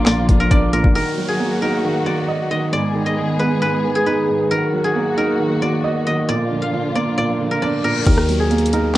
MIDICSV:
0, 0, Header, 1, 8, 480
1, 0, Start_track
1, 0, Key_signature, -6, "minor"
1, 0, Tempo, 444444
1, 1029, Time_signature, 4, 2, 24, 8
1, 9693, End_track
2, 0, Start_track
2, 0, Title_t, "Guzheng"
2, 0, Program_c, 0, 107
2, 0, Note_on_c, 0, 70, 74
2, 0, Note_on_c, 0, 77, 72
2, 70, Note_on_c, 0, 74, 96
2, 200, Note_off_c, 0, 70, 0
2, 431, Note_on_c, 0, 70, 76
2, 544, Note_off_c, 0, 74, 0
2, 549, Note_on_c, 0, 74, 83
2, 784, Note_off_c, 0, 70, 0
2, 788, Note_on_c, 0, 70, 79
2, 1024, Note_off_c, 0, 70, 0
2, 1029, Note_on_c, 0, 70, 107
2, 1266, Note_off_c, 0, 77, 0
2, 1386, Note_on_c, 0, 68, 72
2, 1745, Note_off_c, 0, 70, 0
2, 1750, Note_on_c, 0, 70, 76
2, 2223, Note_off_c, 0, 74, 0
2, 2227, Note_on_c, 0, 74, 75
2, 2711, Note_on_c, 0, 75, 72
2, 2775, Note_off_c, 0, 74, 0
2, 2948, Note_on_c, 0, 74, 101
2, 3013, Note_off_c, 0, 75, 0
2, 3307, Note_on_c, 0, 75, 69
2, 3372, Note_off_c, 0, 74, 0
2, 3667, Note_on_c, 0, 71, 66
2, 3732, Note_off_c, 0, 70, 0
2, 3842, Note_off_c, 0, 68, 0
2, 3904, Note_off_c, 0, 71, 0
2, 3908, Note_on_c, 0, 71, 96
2, 4270, Note_on_c, 0, 68, 73
2, 4386, Note_off_c, 0, 71, 0
2, 4390, Note_on_c, 0, 71, 84
2, 4870, Note_on_c, 0, 70, 101
2, 4935, Note_off_c, 0, 71, 0
2, 5225, Note_off_c, 0, 68, 0
2, 5229, Note_on_c, 0, 68, 68
2, 5233, Note_off_c, 0, 75, 0
2, 5585, Note_off_c, 0, 70, 0
2, 5590, Note_on_c, 0, 70, 67
2, 6069, Note_on_c, 0, 74, 79
2, 6552, Note_on_c, 0, 75, 75
2, 6617, Note_off_c, 0, 74, 0
2, 6790, Note_on_c, 0, 74, 102
2, 6854, Note_off_c, 0, 75, 0
2, 7148, Note_on_c, 0, 77, 69
2, 7505, Note_off_c, 0, 74, 0
2, 7510, Note_on_c, 0, 74, 77
2, 7685, Note_off_c, 0, 68, 0
2, 7746, Note_off_c, 0, 74, 0
2, 7750, Note_on_c, 0, 74, 87
2, 7881, Note_off_c, 0, 70, 0
2, 8110, Note_on_c, 0, 70, 72
2, 8225, Note_off_c, 0, 74, 0
2, 8229, Note_on_c, 0, 74, 79
2, 8464, Note_off_c, 0, 70, 0
2, 8468, Note_on_c, 0, 70, 80
2, 8705, Note_off_c, 0, 70, 0
2, 8709, Note_on_c, 0, 70, 107
2, 8945, Note_off_c, 0, 77, 0
2, 9066, Note_on_c, 0, 68, 75
2, 9425, Note_off_c, 0, 70, 0
2, 9430, Note_on_c, 0, 70, 81
2, 9693, Note_off_c, 0, 68, 0
2, 9693, Note_off_c, 0, 70, 0
2, 9693, Note_off_c, 0, 74, 0
2, 9693, End_track
3, 0, Start_track
3, 0, Title_t, "String section"
3, 0, Program_c, 1, 48
3, 0, Note_on_c, 1, 50, 82
3, 0, Note_on_c, 1, 53, 75
3, 0, Note_on_c, 1, 58, 76
3, 0, Note_on_c, 1, 65, 90
3, 990, Note_off_c, 1, 58, 0
3, 1010, Note_off_c, 1, 50, 0
3, 1010, Note_off_c, 1, 53, 0
3, 1010, Note_off_c, 1, 65, 0
3, 1029, Note_on_c, 1, 51, 76
3, 1029, Note_on_c, 1, 54, 72
3, 1029, Note_on_c, 1, 58, 71
3, 1029, Note_on_c, 1, 66, 87
3, 2930, Note_off_c, 1, 54, 0
3, 2930, Note_off_c, 1, 58, 0
3, 2930, Note_off_c, 1, 66, 0
3, 2949, Note_on_c, 1, 56, 72
3, 2949, Note_on_c, 1, 59, 73
3, 2949, Note_on_c, 1, 68, 89
3, 4850, Note_off_c, 1, 56, 0
3, 4850, Note_off_c, 1, 59, 0
3, 4850, Note_off_c, 1, 68, 0
3, 4869, Note_on_c, 1, 54, 69
3, 4869, Note_on_c, 1, 58, 72
3, 4869, Note_on_c, 1, 66, 86
3, 6746, Note_off_c, 1, 51, 0
3, 6770, Note_off_c, 1, 54, 0
3, 6770, Note_off_c, 1, 66, 0
3, 6788, Note_on_c, 1, 50, 80
3, 6788, Note_on_c, 1, 65, 89
3, 6789, Note_on_c, 1, 53, 70
3, 8671, Note_off_c, 1, 58, 0
3, 8689, Note_off_c, 1, 50, 0
3, 8689, Note_off_c, 1, 65, 0
3, 8690, Note_off_c, 1, 53, 0
3, 9693, End_track
4, 0, Start_track
4, 0, Title_t, "Grand piano"
4, 0, Program_c, 2, 0
4, 0, Control_c, 2, 64, 127
4, 0, Note_on_c, 2, 46, 93
4, 0, Note_on_c, 2, 50, 71
4, 0, Note_on_c, 2, 53, 77
4, 0, Note_on_c, 2, 58, 98
4, 68, Note_off_c, 2, 46, 0
4, 68, Note_on_c, 2, 46, 78
4, 294, Note_off_c, 2, 50, 0
4, 310, Note_on_c, 2, 50, 73
4, 550, Note_on_c, 2, 62, 110
4, 773, Note_off_c, 2, 46, 0
4, 789, Note_off_c, 2, 53, 0
4, 789, Note_on_c, 2, 46, 73
4, 1029, Note_off_c, 2, 46, 0
4, 1029, Note_off_c, 2, 50, 0
4, 1029, Note_off_c, 2, 58, 0
4, 1029, Note_off_c, 2, 62, 0
4, 1029, Note_on_c, 2, 51, 88
4, 1043, Control_c, 2, 64, 0
4, 1242, Control_c, 2, 64, 127
4, 1269, Note_on_c, 2, 54, 76
4, 1510, Note_on_c, 2, 58, 81
4, 1750, Note_on_c, 2, 63, 93
4, 1973, Note_off_c, 2, 51, 0
4, 1989, Note_on_c, 2, 51, 75
4, 2213, Note_off_c, 2, 54, 0
4, 2229, Note_on_c, 2, 54, 73
4, 2467, Note_on_c, 2, 75, 92
4, 2693, Note_off_c, 2, 51, 0
4, 2709, Note_off_c, 2, 58, 0
4, 2709, Note_on_c, 2, 51, 68
4, 2948, Note_off_c, 2, 75, 0
4, 2949, Note_off_c, 2, 51, 0
4, 2949, Note_off_c, 2, 54, 0
4, 2949, Note_on_c, 2, 44, 83
4, 2950, Note_off_c, 2, 63, 0
4, 2963, Control_c, 2, 64, 0
4, 3173, Control_c, 2, 64, 127
4, 3189, Note_on_c, 2, 51, 76
4, 3429, Note_on_c, 2, 56, 75
4, 3669, Note_on_c, 2, 59, 93
4, 3893, Note_off_c, 2, 44, 0
4, 3909, Note_on_c, 2, 44, 68
4, 4133, Note_off_c, 2, 51, 0
4, 4149, Note_on_c, 2, 51, 73
4, 4389, Note_on_c, 2, 63, 97
4, 4613, Note_off_c, 2, 44, 0
4, 4629, Note_off_c, 2, 56, 0
4, 4629, Note_on_c, 2, 44, 67
4, 4853, Note_off_c, 2, 51, 0
4, 4869, Note_off_c, 2, 44, 0
4, 4869, Note_off_c, 2, 59, 0
4, 4869, Note_off_c, 2, 63, 0
4, 4869, Note_on_c, 2, 51, 75
4, 4884, Control_c, 2, 64, 0
4, 5098, Control_c, 2, 64, 127
4, 5110, Note_on_c, 2, 54, 78
4, 5349, Note_on_c, 2, 58, 81
4, 5588, Note_on_c, 2, 63, 95
4, 5812, Note_off_c, 2, 51, 0
4, 5828, Note_on_c, 2, 51, 73
4, 6054, Note_off_c, 2, 54, 0
4, 6070, Note_on_c, 2, 54, 76
4, 6307, Note_on_c, 2, 75, 106
4, 6532, Note_off_c, 2, 51, 0
4, 6548, Note_on_c, 2, 51, 71
4, 6549, Note_off_c, 2, 58, 0
4, 6788, Note_off_c, 2, 63, 0
4, 6788, Note_off_c, 2, 75, 0
4, 6789, Note_off_c, 2, 51, 0
4, 6789, Note_off_c, 2, 54, 0
4, 6789, Note_on_c, 2, 46, 87
4, 6803, Control_c, 2, 64, 0
4, 7002, Control_c, 2, 64, 127
4, 7030, Note_on_c, 2, 50, 68
4, 7269, Note_on_c, 2, 53, 74
4, 7509, Note_on_c, 2, 58, 89
4, 7732, Note_off_c, 2, 46, 0
4, 7748, Note_on_c, 2, 46, 73
4, 7973, Note_off_c, 2, 50, 0
4, 7989, Note_on_c, 2, 50, 72
4, 8230, Note_on_c, 2, 62, 101
4, 8453, Note_off_c, 2, 46, 0
4, 8469, Note_off_c, 2, 53, 0
4, 8469, Note_on_c, 2, 46, 72
4, 8709, Note_off_c, 2, 46, 0
4, 8709, Note_off_c, 2, 50, 0
4, 8709, Note_off_c, 2, 58, 0
4, 8709, Note_off_c, 2, 62, 0
4, 8709, Note_on_c, 2, 51, 93
4, 8723, Control_c, 2, 64, 0
4, 8939, Control_c, 2, 64, 127
4, 8948, Note_on_c, 2, 54, 78
4, 9189, Note_on_c, 2, 58, 85
4, 9431, Note_on_c, 2, 63, 94
4, 9652, Note_off_c, 2, 51, 0
4, 9693, Note_off_c, 2, 54, 0
4, 9693, Note_off_c, 2, 58, 0
4, 9693, Note_off_c, 2, 63, 0
4, 9693, End_track
5, 0, Start_track
5, 0, Title_t, "808-style bass"
5, 0, Program_c, 3, 38
5, 0, Note_on_c, 3, 34, 103
5, 290, Note_off_c, 3, 34, 0
5, 309, Note_on_c, 3, 34, 107
5, 539, Note_off_c, 3, 34, 0
5, 550, Note_on_c, 3, 34, 105
5, 895, Note_off_c, 3, 34, 0
5, 909, Note_on_c, 3, 34, 99
5, 1024, Note_off_c, 3, 34, 0
5, 8709, Note_on_c, 3, 39, 112
5, 9693, Note_off_c, 3, 39, 0
5, 9693, End_track
6, 0, Start_track
6, 0, Title_t, "Downlifter"
6, 0, Program_c, 4, 103
6, 1029, Note_on_c, 4, 60, 83
6, 4869, Note_off_c, 4, 60, 0
6, 8709, Note_on_c, 4, 60, 85
6, 9693, Note_off_c, 4, 60, 0
6, 9693, End_track
7, 0, Start_track
7, 0, Title_t, "Reverse cymbal"
7, 0, Program_c, 5, 119
7, 7749, Note_on_c, 5, 60, 84
7, 8709, Note_off_c, 5, 60, 0
7, 9693, End_track
8, 0, Start_track
8, 0, Title_t, "Drums"
8, 64, Note_on_c, 9, 39, 94
8, 70, Note_on_c, 9, 38, 117
8, 70, Note_on_c, 9, 42, 72
8, 172, Note_off_c, 9, 39, 0
8, 178, Note_off_c, 9, 38, 0
8, 178, Note_off_c, 9, 42, 0
8, 309, Note_on_c, 9, 36, 92
8, 309, Note_on_c, 9, 42, 85
8, 417, Note_off_c, 9, 36, 0
8, 417, Note_off_c, 9, 42, 0
8, 550, Note_on_c, 9, 36, 91
8, 551, Note_on_c, 9, 42, 85
8, 658, Note_off_c, 9, 36, 0
8, 659, Note_off_c, 9, 42, 0
8, 791, Note_on_c, 9, 42, 70
8, 899, Note_off_c, 9, 42, 0
8, 909, Note_on_c, 9, 36, 103
8, 1017, Note_off_c, 9, 36, 0
8, 8709, Note_on_c, 9, 36, 111
8, 8709, Note_on_c, 9, 42, 77
8, 8709, Note_on_c, 9, 49, 94
8, 8817, Note_off_c, 9, 36, 0
8, 8817, Note_off_c, 9, 42, 0
8, 8817, Note_off_c, 9, 49, 0
8, 8830, Note_on_c, 9, 37, 106
8, 8938, Note_off_c, 9, 37, 0
8, 8950, Note_on_c, 9, 46, 72
8, 9058, Note_off_c, 9, 46, 0
8, 9189, Note_on_c, 9, 42, 52
8, 9269, Note_off_c, 9, 42, 0
8, 9269, Note_on_c, 9, 42, 68
8, 9349, Note_off_c, 9, 42, 0
8, 9349, Note_on_c, 9, 42, 86
8, 9426, Note_off_c, 9, 42, 0
8, 9426, Note_on_c, 9, 42, 91
8, 9534, Note_off_c, 9, 42, 0
8, 9693, End_track
0, 0, End_of_file